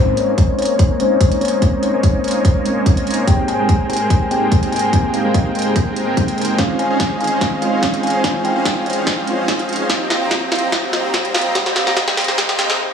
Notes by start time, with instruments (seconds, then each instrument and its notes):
Already playing: tine electric piano G#3 C4 C#4, supersaw synth A#3 A#4 C5 C#5 D#5 G#5, riser
0.00 tine electric piano D#4
0.17 kalimba C#5, closed hi-hat
0.28 supersaw synth A#3 A#4 C5 C#5 D#5 G#5
0.38 kick, closed hi-hat
0.59 supersaw synth A#3 A#4 C5 C#5 D#5 G#5, kalimba C#5, closed hi-hat
0.62 closed hi-hat
0.65 closed hi-hat
0.79 kick, closed hi-hat
0.90 supersaw synth A#3 A#4 C5 C#5 D#5 G#5
0.98 tine electric piano G#3 C4 C#4 D#4, kalimba C5, closed hi-hat
1.21 kick, closed hi-hat
1.32 supersaw synth A#3 A#4 C5 C#5 D#5 G#5, closed hi-hat
1.41 kalimba C#5, closed hi-hat
1.45 closed hi-hat
1.48 closed hi-hat
1.60 tine electric piano G#3 C4 C#4, supersaw synth A#3 A#4 C5 C#5 D#5 G#5, kick, closed hi-hat
1.64 tine electric piano D#4
1.83 kalimba C#5, closed hi-hat
1.94 supersaw synth A#3 A#4 C5 C#5 D#5 G#5
2.03 kalimba C#5, kick, closed hi-hat
2.24 supersaw synth A#3 A#4 C5 C#5 D#5 G#5, closed hi-hat
2.28 closed hi-hat
2.31 closed hi-hat
2.45 kick, closed hi-hat
2.56 supersaw synth A#3 A#4 C5 C#5 D#5 G#5
2.63 tine electric piano G#3 C4 C#4, closed hi-hat
2.68 tine electric piano D#4
2.86 kick, closed hi-hat
2.97 supersaw synth A#3 A#4 C5 C#5 D#5 G#5, closed hi-hat
3.07 closed hi-hat
3.11 closed hi-hat
3.14 closed hi-hat
3.25 supersaw synth G#3 G#4 A#4 C5 G5, tine electric piano A#3 C4 D#4, kalimba G5, kick, closed hi-hat
3.30 tine electric piano G4
3.48 kalimba G#5, closed hi-hat
3.59 supersaw synth G#3 G#4 A#4 C5 G5
3.69 kick, closed hi-hat
3.90 supersaw synth G#3 G#4 A#4 C5 G5, kalimba G#5, closed hi-hat
3.93 closed hi-hat
3.97 closed hi-hat
4.10 kick, closed hi-hat
4.21 supersaw synth G#3 G#4 A#4 C5 G5
4.29 tine electric piano A#3 C4 D#4 G4, kalimba G5, closed hi-hat
4.52 kick, closed hi-hat
4.63 supersaw synth G#3 G#4 A#4 C5 G5, closed hi-hat
4.72 kalimba G#5, closed hi-hat
4.76 closed hi-hat
4.79 closed hi-hat
4.91 supersaw synth G#3 G#4 A#4 C5 G5, tine electric piano A#3 C4 D#4, kick, closed hi-hat
4.95 tine electric piano G4
5.14 kalimba F5, closed hi-hat
5.25 supersaw synth G#3 G#4 A#4 C5 G5
5.34 kalimba D#5, kick, closed hi-hat
5.55 supersaw synth G#3 G#4 A#4 C5 G5, closed hi-hat
5.59 closed hi-hat
5.62 closed hi-hat
5.76 kick, closed hi-hat
5.87 supersaw synth G#3 G#4 A#4 C5 G5
5.96 closed hi-hat
6.05 tine electric piano A#3 C4 D#4 G5
6.17 supersaw synth G#3 G#4 G5, kick, closed hi-hat
6.28 closed hi-hat
6.38 closed hi-hat
6.41 closed hi-hat
6.45 closed hi-hat
6.56 tine electric piano G#3 C4 D#4, supersaw synth C#4 G#4 D#5 F5, kalimba F5, kick, snare, closed hi-hat
6.60 tine electric piano F4
6.79 kalimba G#5, closed hi-hat
6.90 supersaw synth C#4 G#4 C5 D#5 F5
7.00 kick, snare, closed hi-hat
7.21 supersaw synth C#4 G#4 C5 D#5 F5, kalimba G#5, closed hi-hat
7.24 closed hi-hat
7.27 closed hi-hat
7.41 kick, snare, closed hi-hat
7.52 supersaw synth C#4 G#4 C5 D#5 F5
7.60 tine electric piano G#3 C4 D#4, kalimba F5, closed hi-hat
7.64 tine electric piano F4
7.83 kick, snare, closed hi-hat
7.94 supersaw synth C#4 G#4 C5 D#5 F5, closed hi-hat
8.03 kalimba G#5, closed hi-hat
8.07 closed hi-hat
8.10 closed hi-hat
8.22 tine electric piano G#3 C4 D#4, supersaw synth C#4 G#4 C5 D#5 F5, kick, snare, closed hi-hat
8.26 tine electric piano F4
8.45 kalimba G5, closed hi-hat
8.56 supersaw synth C#4 G#4 C5 D#5 F5
8.65 kick, snare, closed hi-hat
8.86 supersaw synth C#4 G#4 C5 D#5 F5, closed hi-hat
8.90 closed hi-hat
8.93 closed hi-hat
9.07 kick, snare, closed hi-hat
9.18 supersaw synth C#4 G#4 C5 D#5 F5
9.26 tine electric piano G#3 C4 D#4 F4, closed hi-hat
9.48 kick, snare, closed hi-hat
9.59 supersaw synth C#4 G#4 C5 D#5 F5, closed hi-hat
9.69 closed hi-hat
9.73 closed hi-hat
9.76 closed hi-hat
9.88 tine electric piano A#3 C4 D#4 G4, kalimba D#5, kick, snare, closed hi-hat
10.10 kalimba F5, snare, closed hi-hat
10.21 supersaw synth C4 C5 D#5 G5 A#5
10.31 kick, snare, closed hi-hat
10.52 supersaw synth C4 C5 D#5 G5 A#5, kalimba F5, snare, closed hi-hat
10.55 closed hi-hat
10.59 closed hi-hat
10.72 kick, snare, closed hi-hat
10.83 supersaw synth C4 C5 D#5 G5 A#5
10.91 tine electric piano A#3 C4 D#4 G4, kalimba D#5, snare, closed hi-hat
11.14 kick, snare, closed hi-hat
11.25 supersaw synth C4 C5 D#5 G5 A#5, closed hi-hat
11.34 kalimba F5, snare, closed hi-hat
11.38 closed hi-hat
11.41 closed hi-hat
11.53 tine electric piano A#3 C4 D#4 G4, kick, snare, closed hi-hat
11.66 snare
11.76 kalimba F5, snare, closed hi-hat
11.87 supersaw synth C4 C5 D#5 G5 A#5, snare
11.96 kalimba D#5, kick, snare, closed hi-hat
12.08 snare
12.17 supersaw synth C4 C5 D#5 G5 A#5, snare, closed hi-hat
12.21 closed hi-hat
12.24 closed hi-hat
12.28 snare
12.38 kick, snare, closed hi-hat
12.49 supersaw synth C4 C5 D#5 G5 A#5, snare
12.57 tine electric piano A#3 C4 D#4 G4, snare, closed hi-hat
12.70 snare